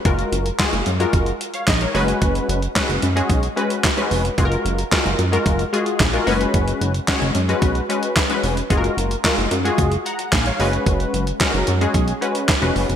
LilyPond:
<<
  \new Staff \with { instrumentName = "Analog polysynth" } { \time 4/4 \key fis \major \tempo 4 = 111 << { r2 r8. <cis'' eis''>16 dis''16 <ais' cis''>8 r16 | r1 | r1 | r1 |
r2 r8 <fis'' ais''>8 <eis'' gis''>16 <cis'' eis''>8 r16 | r1 | } \\ { <gis eis' fis' ais'>8. r16 <gis eis' fis' gis'>8 r16 <gis eis' fis' ais'>8 r4 r16 <gis cis' fis' b'>8~ | <gis cis' fis' b'>8. r16 <gis cis' fis' b'>8 r16 <gis cis' fis' gis'>8 r16 <gis cis' fis' b'>8 r16 <gis cis' fis' b'>8 r16 | <gis eis' fis' gis' ais'>8. r16 <gis eis' fis' ais'>8 r16 <gis eis' fis' ais'>8 r16 <gis eis' fis' gis'>8 r16 <gis eis' fis' ais'>16 <gis cis' fis' b'>8~ | <gis cis' fis' b'>8. r16 <gis cis' fis' cis''>8 r16 <gis cis' fis' b'>8 r16 <gis cis' fis' b'>8 r16 <gis cis' fis' b'>8 r16 |
<gis eis' fis' gis' ais'>8. r16 <gis eis' fis' ais'>8 r16 <gis eis' fis' gis'>8 r4 r16 <gis cis' fis' b'>8~ | <gis cis' fis' b'>8. r16 <gis cis' fis' ais'>8 r16 <gis cis' fis' gis'>8 r16 <gis cis' fis' b'>8 r16 <gis cis' fis' b'>8 r16 | } >> }
  \new Staff \with { instrumentName = "Analog synth bass" } { \clef bass \time 4/4 \key fis \major fis,,8 fis,,8 r16 fis,,16 fis,8 fis,,8 r8 ais,,8 fis,,8 | fis,,8 fis,,8 r16 fis,,16 fis,8 b,,8 r4 eis,,8 | fis,,8 fis,,8 r16 fis,,16 fis,8 fis,,8 r8 ais,,8 fis,,8 | fis,,8 fis,,8 r16 fis,,16 fis,8 b,,8 r4 eis,,8 |
fis,,8 fis,,8 r16 fis,,16 fis,8 fis,,8 r8 ais,,8 fis,,8 | fis,,8 fis,,8 r16 fis,,16 fis,8 b,,8 r8. eis,,16 fis,,16 eis,,16 | }
  \new DrumStaff \with { instrumentName = "Drums" } \drummode { \time 4/4 <hh bd>16 hh16 hh16 hh16 <hc hh bd sn>16 hh16 hh16 hh16 <hh bd>16 hh16 hh16 hh16 <hc hh bd sn>16 hh16 hho16 hh16 | <hh bd>16 hh16 hh16 hh16 <hc hh bd sn>16 hh16 hh16 hh16 <hh bd>16 hh16 hh16 hh16 <hc hh bd sn>16 hh16 hho16 hh16 | <hh bd>16 hh16 hh16 hh16 <hc hh bd sn>16 hh16 hh16 hh16 <hh bd>16 hh16 hh16 hh16 <hc hh bd sn>16 hh16 hho16 hh16 | <hh bd>16 hh16 hh16 hh16 <hc hh bd sn>16 hh16 hh16 hh16 <hh bd>16 hh16 hh16 hh16 <hc hh bd sn>16 hh16 hho16 hh16 |
<hh bd>16 hh16 hh16 hh16 <hc hh bd sn>16 hh16 hh16 hh16 <hh bd>16 hh16 hh16 hh16 <hc hh bd sn>16 hh16 hho16 hh16 | <hh bd>16 hh16 hh16 hh16 <hc hh bd sn>16 hh16 hh16 hh16 <hh bd>16 hh16 hh16 hh16 <hc hh bd sn>16 hh16 hho16 hh16 | }
>>